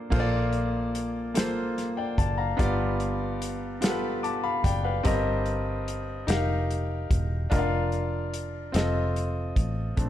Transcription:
Already playing: grand piano A#3 D4 A4 C5 D5
0.10 fingered electric bass A#1, grand piano A#2 A#3 F4 A4 C5, kick, crash
0.20 grand piano D5
0.53 closed hi-hat
0.95 closed hi-hat
1.34 grand piano A#3 F4 A4 C5, snare, closed hi-hat
1.78 snare, closed hi-hat
1.97 grand piano D5 G5
2.18 fingered electric bass F#1, grand piano D5 A5, kick, closed hi-hat
2.38 grand piano F5 A#5
2.57 fingered electric bass G1, grand piano G2 B3 F4 G4 D5, kick, closed hi-hat
3.00 closed hi-hat
3.42 closed hi-hat
3.81 grand piano B3 F4 G4 A4, snare, closed hi-hat
3.90 grand piano B4
4.23 grand piano A5 D6, closed hi-hat
4.44 grand piano F5 B5
4.64 fingered electric bass F#1, grand piano D5 G5, kick, closed hi-hat
4.84 grand piano B4 F5
5.03 fingered electric bass G1, grand piano G2 C4 G4 A#4 D#5, kick, closed hi-hat
5.46 closed hi-hat
5.88 closed hi-hat
6.27 fingered electric bass F1, grand piano D#4 G4 A#4 F5, snare, closed hi-hat
6.71 closed hi-hat
7.11 fingered electric bass E1, kick, closed hi-hat
7.50 fingered electric bass F1, grand piano D4 F4 A#4 D#5, kick, closed hi-hat
7.59 grand piano F5
7.92 closed hi-hat
8.34 closed hi-hat
8.72 fingered electric bass F1, grand piano C4 F4 A4 D#5, snare, closed hi-hat
9.16 closed hi-hat
9.56 fingered electric bass A1, kick, closed hi-hat
9.97 fingered electric bass A#1, grand piano A3 C4 D4, kick, closed hi-hat

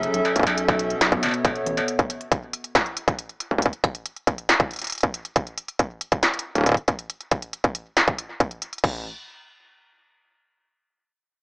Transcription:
Already playing: analog synth pad F#3 C#4 G#4 A4 E5
0.03 closed hi-hat
0.14 analog synth bass B1, analog synth pad B2, closed hi-hat
0.25 closed hi-hat, struck metal
0.36 kick, closed hi-hat
0.40 kick
0.43 analog synth bass B1, kick, closed hi-hat, struck metal
0.57 analog synth pad B3, closed hi-hat
0.68 kick, closed hi-hat, struck metal
0.79 closed hi-hat
0.90 analog synth pad C#5, closed hi-hat
1.01 analog synth bass B1, snare, closed hi-hat, struck metal
1.12 kick, closed hi-hat
1.23 analog synth bass F#1, closed hi-hat, struck metal
1.26 struck metal
1.28 struck metal
1.31 closed hi-hat, struck metal
1.45 kick, closed hi-hat, struck metal
1.55 closed hi-hat
1.66 analog synth bass A1, closed hi-hat
1.77 closed hi-hat, struck metal
1.88 closed hi-hat
1.99 kick, closed hi-hat
2.10 closed hi-hat
2.21 closed hi-hat
2.32 kick, closed hi-hat
2.53 closed hi-hat
2.64 closed hi-hat
2.75 kick, snare, closed hi-hat
2.86 closed hi-hat
2.97 closed hi-hat
3.08 kick, closed hi-hat
3.19 closed hi-hat
3.29 closed hi-hat
3.40 closed hi-hat
3.51 kick
3.58 kick, closed hi-hat
3.66 kick
3.73 closed hi-hat
3.84 kick, closed hi-hat
3.95 closed hi-hat
4.06 closed hi-hat
4.16 closed hi-hat
4.27 kick, closed hi-hat
4.38 closed hi-hat
4.49 snare, closed hi-hat
4.60 kick, closed hi-hat
4.71 closed hi-hat
4.73 closed hi-hat
4.76 closed hi-hat
4.79 closed hi-hat
4.82 closed hi-hat
4.84 closed hi-hat
4.87 closed hi-hat
4.90 closed hi-hat
4.92 closed hi-hat
4.95 closed hi-hat
4.98 closed hi-hat
5.01 kick, closed hi-hat
5.14 closed hi-hat
5.25 closed hi-hat
5.36 kick, closed hi-hat
5.47 closed hi-hat
5.58 closed hi-hat
5.68 closed hi-hat
5.79 kick, closed hi-hat
6.01 closed hi-hat
6.12 kick, closed hi-hat
6.23 snare, closed hi-hat
6.34 closed hi-hat
6.39 closed hi-hat
6.55 kick, closed hi-hat
6.58 kick
6.61 kick
6.64 kick, closed hi-hat
6.66 kick
6.69 kick
6.72 kick
6.74 kick, closed hi-hat
6.88 kick, closed hi-hat
6.99 closed hi-hat
7.10 closed hi-hat
7.21 closed hi-hat
7.31 kick, closed hi-hat
7.42 closed hi-hat
7.53 closed hi-hat
7.64 kick, closed hi-hat
7.75 closed hi-hat
7.97 snare, closed hi-hat
8.08 kick, closed hi-hat
8.18 closed hi-hat
8.40 kick, closed hi-hat
8.51 closed hi-hat
8.62 closed hi-hat
8.73 closed hi-hat
8.78 closed hi-hat
8.84 kick, closed hi-hat, crash
8.89 closed hi-hat

